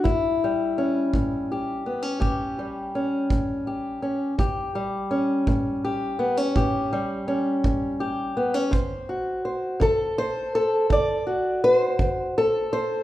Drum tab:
BD |o--o--o--o--|o--o--o--o--|o--o--o--o--|